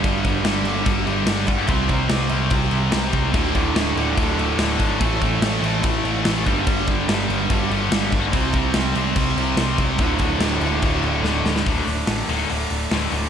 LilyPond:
<<
  \new Staff \with { instrumentName = "Distorted electric guitar" } { \clef bass \time 4/4 \key g \mixolydian \tempo 4 = 144 <g, d g>4 <g, d g>4. <g, d g>4 r8 | <c g c'>4. <c g c'>4. <c g c'>4 | <d, a, d>4. <d, a, d>4. <d, a, d>4 | <a, e a>4. <a, e a>4. <a, e a>8 <g, d g>8~ |
<g, d g>4 <g, d g>4. <g, d g>4 r8 | <c g c'>4. <c g c'>4. <c g c'>4 | <d, a, d>4. <d, a, d>4. <d, a, d>4 | <d, a, d>8 r4 <d, a, d>8 r4 <d, a, d>8 r8 | }
  \new Staff \with { instrumentName = "Distorted electric guitar" } { \clef bass \time 4/4 \key g \mixolydian <g, d g>8 <g, d g>8 <g, d g>8 <g, d g>8 <g, d g>8 <g, d g>8 <g, d g>8 <g, d g>8 | <c g c'>8 <c g c'>8 <c g c'>8 <c g c'>8 <c g c'>8 <c g c'>8 <c g c'>8 <c g c'>8 | <d, a, d>8 <d, a, d>8 <d, a, d>8 <d, a, d>8 <d, a, d>8 <d, a, d>8 <d, a, d>8 <d, a, d>8 | <a, e a>8 <a, e a>8 <a, e a>8 <a, e a>8 <a, e a>8 <a, e a>8 <a, e a>8 <g, d g>8 |
<g, d g>8 <g, d g>8 <g, d g>8 <g, d g>8 <g, d g>8 <g, d g>8 <g, d g>8 <g, d g>8 | <c g c'>8 <c g c'>8 <c g c'>8 <c g c'>8 <c g c'>8 <c g c'>8 <c g c'>8 <c g c'>8 | <d, a, d>8 <d, a, d>8 <d, a, d>8 <d, a, d>8 <d, a, d>8 <d, a, d>8 <d, a, d>8 <d, a, d>8 | <d, a, d>4 <d, a, d>8 <d, a, d>8 <d, a, d>4 <d, a, d>8 <d, a, d>8 | }
  \new Staff \with { instrumentName = "Overdriven electric guitar" } { \clef bass \time 4/4 \key g \mixolydian <g, d g>2.~ <g, d g>8 r8 | <c g c'>1 | <d, a, d>1 | <a, e a>2.~ <a, e a>8 <g, d g>8~ |
<g, d g>2.~ <g, d g>8 r8 | <c g c'>1 | <d, a, d>1 | r1 | }
  \new Staff \with { instrumentName = "Picked electric bass" } { \clef bass \time 4/4 \key g \mixolydian g,,8 g,,8 g,,8 g,,8 g,,8 g,,8 g,,8 g,,8 | c,8 c,8 c,8 c,8 c,8 c,8 c,8 c,8 | d,,8 d,,8 d,,8 d,,8 d,,8 d,,8 d,,8 gis,,8 | a,,8 a,,8 a,,8 a,,8 a,,8 a,,8 a,,8 g,,8 |
g,,8 g,,8 g,,8 g,,8 g,,8 g,,8 g,,8 g,,8 | c,8 c,8 c,8 c,8 c,8 c,8 c,8 c,8 | d,,8 d,,8 d,,8 d,,8 d,,8 d,,8 d,,8 d,,8 | d,,8 d,,8 a,,8 d,,8 d,,8 d,,8 d,,8 d,,8 | }
  \new DrumStaff \with { instrumentName = "Drums" } \drummode { \time 4/4 <cymc bd>8 <cymc bd>8 <cymc sn>8 cymc8 <cymc bd>8 cymc8 <cymc sn>8 <cymc bd>8 | <cymc bd>8 <cymc bd>8 <cymc sn>8 cymc8 <cymc bd>8 cymc8 <cymc sn>8 <cymc bd>8 | <cymc bd>8 <cymc bd>8 <cymc sn>8 cymc8 <cymc bd>8 cymc8 <cymc sn>8 <cymc bd>8 | <cymc bd>8 <cymc bd>8 <cymc sn>8 cymc8 <cymc bd>8 cymc8 <cymc sn>8 <cymc bd>8 |
<cymc bd>8 <cymc bd>8 <cymc sn>8 cymc8 <cymc bd>8 cymc8 <cymc sn>8 <cymc bd>8 | <cymc bd>8 <cymc bd>8 <cymc sn>8 cymc8 <cymc bd>8 cymc8 <cymc sn>8 <cymc bd>8 | <cymc bd>8 <cymc bd>8 <cymc sn>8 cymc8 <cymc bd>8 cymc8 sn8 sn16 sn16 | <hho bd>8 hho8 <hho sn>8 hho8 hho8 hho8 <hho sn>8 hho8 | }
>>